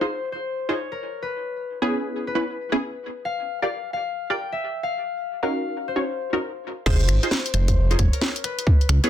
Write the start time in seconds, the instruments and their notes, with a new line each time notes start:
Already playing: harp F#5
0.01 synth stab D#4 F4 G#4 C5, harp C5
0.32 harp C5
0.69 synth stab D#4 F4 G#4 C5, harp C#5
0.92 harp A#4
1.22 harp B4
1.82 synth stab B3 C#4 E4 G#4, harp B4
2.27 harp B4
2.35 synth stab B3 C#4 E4 B4
2.72 synth stab B3 C#4 E4 G#4
3.25 harp F5
3.62 synth stab F4 G4 A#4 D5, harp F5
3.93 harp F5
4.30 synth stab F4 G4 A#4 D5, harp G5
4.52 harp E5
4.83 harp F5
5.43 synth stab C#4 D#4 F#4 A#4, harp F5
5.88 harp C5
5.96 synth stab C#4 D#4 F#4 C#5
6.33 synth stab C#4 D#4 F#4 A#4
6.86 detuned saw bass F1, synth stab D#4 F4 G#4 C5, harp C5, kick, crash
7.01 closed hi-hat
7.09 detuned saw bass G#1, finger snap, closed hi-hat
7.23 synth stab D#4 F4 G#4 C5, harp C5, closed hi-hat
7.31 snare
7.46 closed hi-hat
7.54 detuned saw bass F1, harp C5, finger snap, closed hi-hat
7.68 kick, closed hi-hat
7.90 synth stab D#4 F4 G#4 C5, harp C#5, closed hi-hat
7.99 detuned saw bass F1, kick, closed hi-hat
8.13 harp A#4, closed hi-hat
8.21 snare
8.36 closed hi-hat
8.44 harp B4, finger snap, closed hi-hat
8.59 closed hi-hat
8.67 kick
8.81 closed hi-hat
8.89 detuned saw bass C#2, finger snap, closed hi-hat
9.04 synth stab B3 C#4 E4 G#4, harp B4, closed hi-hat